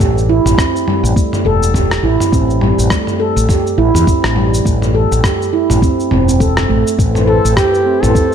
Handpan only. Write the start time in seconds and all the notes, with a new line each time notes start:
0.00 G4
0.29 E4
0.58 C4
0.87 G3
1.16 A3
1.46 A4
1.74 G4
2.04 E4
2.33 C4
2.62 G3
2.91 A3
3.20 A4
3.49 G4
3.78 E4
4.07 C4
4.36 G3
4.65 A3
4.95 A4
5.24 G4
5.53 E4
5.82 C4
6.11 C4
6.28 C4
6.40 A4
6.69 A3
6.99 A3
7.27 A4
7.57 G4
7.86 C4
8.15 C4